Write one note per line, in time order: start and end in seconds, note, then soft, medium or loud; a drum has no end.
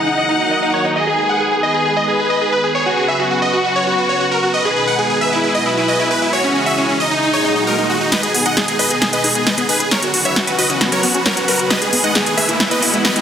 0.00 0.87 F#5 medium
0.06 2.72 D#3 medium
0.06 0.95 F#3 medium
0.06 0.95 A#3 medium
0.06 0.15 D#4 medium
0.06 0.95 F#4 medium
0.06 0.95 A#4 medium
0.17 0.26 D#5 medium
0.29 0.37 D#4 medium
0.40 0.49 D#4 medium
0.51 0.60 D#5 medium
0.62 0.71 D#4 medium
0.74 0.82 C#5 medium
0.85 0.93 D#4 medium
0.96 2.73 G#3 medium
0.96 4.50 B3 medium
0.96 1.54 G#4 medium
0.96 2.73 G#4 medium
0.96 2.73 B4 medium
0.96 1.04 D#5 medium
1.07 1.16 G#4 medium
1.18 1.27 G#4 medium
1.29 1.38 F#5 medium
1.40 1.49 G#4 medium
1.52 1.60 G#4 medium
1.63 2.05 G#4 medium
1.63 1.72 D#5 medium
1.74 1.83 G#4 medium
1.85 1.94 G#4 medium
1.97 2.05 D#5 medium
2.08 2.16 G#4 medium
2.08 2.66 B4 medium
2.19 2.28 G#4 medium
2.30 2.39 D#5 medium
2.41 2.50 G#4 medium
2.52 2.61 B4 medium
2.64 2.72 G#4 medium
2.75 4.52 C#3 medium
2.75 4.52 F#3 medium
2.75 4.52 F#4 medium
2.75 3.33 G#4 medium
2.75 4.52 B4 loud
2.75 2.83 C#5 medium
2.86 2.95 F#4 medium
2.97 3.06 F#4 medium
3.08 3.17 E5 medium
3.20 3.28 F#4 medium
3.31 3.39 F#4 medium
3.42 4.45 F#4 medium
3.42 3.51 D#5 medium
3.53 3.62 F#4 medium
3.64 3.73 F#4 medium
3.76 3.84 C#5 medium
3.87 3.95 F#4 medium
3.98 4.07 F#4 medium
4.09 4.18 C#5 medium
4.20 4.29 F#4 medium
4.31 4.40 A#4 medium
4.43 4.51 F#4 medium
4.54 6.31 B2 medium
4.54 5.43 D#3 medium
4.54 6.31 G#3 medium
4.54 5.43 D#4 medium
4.54 6.31 G#4 medium
4.54 5.12 B4 medium
4.54 4.62 D#5 medium
4.65 4.74 G#4 medium
4.76 4.85 G#4 medium
4.87 4.96 F#5 medium
4.99 5.07 G#4 medium
5.10 5.19 G#4 medium
5.21 5.64 B4 medium
5.21 5.30 E5 medium
5.32 5.41 E4 medium
5.43 6.32 F#3 medium
5.43 5.52 E4 medium
5.43 7.21 E4 medium
5.55 5.63 D#5 medium
5.66 5.75 E4 medium
5.66 6.24 B4 medium
5.77 5.86 E4 medium
5.88 5.97 D#5 medium
5.99 6.08 E4 medium
6.11 6.19 B4 medium
6.22 6.30 E4 medium
6.33 7.22 C#3 medium
6.33 7.22 E3 medium
6.33 7.22 G#3 medium
6.33 6.91 F#4 medium
6.33 7.22 G#4 medium
6.33 6.42 C#5 loud
6.44 6.53 C#4 medium
6.55 6.64 C#4 medium
6.66 6.75 E5 medium
6.78 6.86 C#4 medium
6.89 6.98 C#4 medium
7.00 8.03 D#4 medium
7.00 7.09 D#5 medium
7.11 7.20 D#4 medium
7.22 8.11 A#2 medium
7.22 8.11 D#3 medium
7.22 8.11 F#3 medium
7.22 7.31 D#4 medium
7.22 8.11 D#4 medium
7.22 8.11 F#4 medium
7.22 swell medium
7.33 7.42 C#5 medium
7.45 7.53 D#4 medium
7.56 7.65 D#4 medium
7.67 7.76 A#4 medium
7.78 7.87 D#4 medium
7.90 7.98 F#4 medium
8.01 8.10 D#4 medium
8.12 9.89 B2 medium
8.12 9.89 D#3 medium
8.12 8.17 G#3 medium
8.12 9.89 G#3 medium
8.12 9.89 D#4 medium
8.12 9.89 G#4 loud
8.12 8.21 B4 medium
8.12 8.21 D#5 medium
8.12 snare soft
8.12 closed hi-hat medium
8.12 riser medium
8.23 8.32 G#4 medium
8.23 closed hi-hat medium
8.34 8.41 B3 medium
8.34 8.43 G#4 medium
8.34 open hi-hat loud
8.46 8.52 D#4 medium
8.46 8.54 D#5 medium
8.46 8.54 F#5 medium
8.46 closed hi-hat medium
8.57 8.65 G#4 medium
8.57 8.60 G#4 medium
8.57 snare soft
8.57 closed hi-hat medium
8.68 8.77 G#4 medium
8.68 closed hi-hat medium
8.79 8.88 B4 medium
8.79 8.84 B4 medium
8.79 8.88 D#5 medium
8.79 open hi-hat medium
8.90 8.99 G#4 medium
8.90 closed hi-hat soft
9.02 9.10 G#4 medium
9.02 9.04 G#4 loud
9.02 snare soft
9.02 closed hi-hat medium
9.13 9.22 B4 medium
9.13 9.22 D#5 loud
9.13 closed hi-hat medium
9.24 9.31 D#4 medium
9.24 9.33 G#4 medium
9.24 open hi-hat medium
9.35 9.42 B3 medium
9.35 9.44 G#4 medium
9.35 closed hi-hat soft
9.46 9.49 G#3 medium
9.46 9.55 B4 medium
9.46 9.55 D#5 medium
9.46 snare medium
9.46 closed hi-hat medium
9.58 9.62 B3 loud
9.58 9.66 G#4 medium
9.58 closed hi-hat medium
9.69 9.73 D#4 medium
9.69 9.78 G#4 medium
9.69 9.78 B4 medium
9.69 open hi-hat medium
9.80 9.85 G#4 loud
9.80 9.89 G#4 medium
9.80 closed hi-hat medium
9.91 11.69 C#3 medium
9.91 11.69 F#3 medium
9.91 13.21 B3 medium
9.91 11.69 F#4 medium
9.91 10.00 A#4 medium
9.91 12.57 B4 loud
9.91 10.00 C#5 loud
9.91 snare soft
9.91 closed hi-hat medium
10.03 10.11 F#4 medium
10.03 closed hi-hat medium
10.14 10.22 F#4 medium
10.14 open hi-hat loud
10.25 10.34 C#5 medium
10.25 10.34 E5 medium
10.25 closed hi-hat medium
10.36 10.45 F#4 medium
10.36 snare medium
10.36 closed hi-hat medium
10.47 10.56 F#4 medium
10.47 10.52 B4 loud
10.47 closed hi-hat soft
10.58 10.63 F#4 medium
10.58 10.67 B4 medium
10.58 10.67 D#5 loud
10.58 open hi-hat medium
10.70 10.74 C#4 loud
10.70 10.78 F#4 medium
10.70 closed hi-hat medium
10.81 10.85 B3 medium
10.81 10.90 F#4 medium
10.81 snare medium
10.81 closed hi-hat medium
10.92 10.99 F#3 medium
10.92 11.01 A#4 medium
10.92 11.01 C#5 medium
10.92 closed hi-hat medium
11.03 11.06 B3 loud
11.03 11.12 F#4 medium
11.03 open hi-hat loud
11.14 11.21 C#4 medium
11.14 11.23 F#4 medium
11.14 closed hi-hat medium
11.26 11.30 F#4 medium
11.26 11.34 A#4 medium
11.26 11.34 C#5 medium
11.26 snare medium
11.26 closed hi-hat medium
11.37 11.45 F#4 medium
11.37 closed hi-hat medium
11.48 11.57 F#4 medium
11.48 11.57 A#4 medium
11.48 11.51 B4 loud
11.48 open hi-hat medium
11.59 11.68 F#4 medium
11.59 closed hi-hat medium
11.70 12.59 D#3 medium
11.70 11.75 G#3 medium
11.70 13.21 G#3 medium
11.70 12.59 G#4 medium
11.70 11.79 B4 medium
11.70 11.79 D#5 medium
11.70 snare medium
11.70 closed hi-hat medium
11.82 11.90 G#4 medium
11.82 closed hi-hat soft
11.93 11.99 B3 medium
11.93 12.01 G#4 medium
11.93 open hi-hat loud
12.04 12.11 D#4 medium
12.04 12.12 D#5 medium
12.04 12.12 F#5 medium
12.04 closed hi-hat medium
12.15 12.24 G#4 medium
12.15 12.18 G#4 medium
12.15 snare medium
12.15 closed hi-hat medium
12.26 12.35 G#4 medium
12.26 closed hi-hat soft
12.37 12.46 G#4 medium
12.37 12.42 B4 medium
12.37 12.46 E5 medium
12.37 open hi-hat medium
12.49 12.57 E4 medium
12.49 closed hi-hat soft
12.60 13.21 E3 medium
12.60 12.63 E4 loud
12.60 12.69 E4 medium
12.60 13.21 F#4 medium
12.60 13.21 B4 medium
12.60 snare medium
12.60 closed hi-hat medium
12.71 12.80 B4 medium
12.71 12.80 D#5 medium
12.71 closed hi-hat soft
12.82 12.89 B3 medium
12.82 12.91 E4 medium
12.82 open hi-hat loud
12.93 13.00 G#3 medium
12.93 13.02 E4 medium
12.93 closed hi-hat medium
13.05 13.07 F#3 medium
13.05 13.13 B4 medium
13.05 13.13 D#5 medium
13.05 snare medium
13.05 closed hi-hat medium
13.16 13.20 G#3 loud
13.16 13.21 E4 medium
13.16 closed hi-hat soft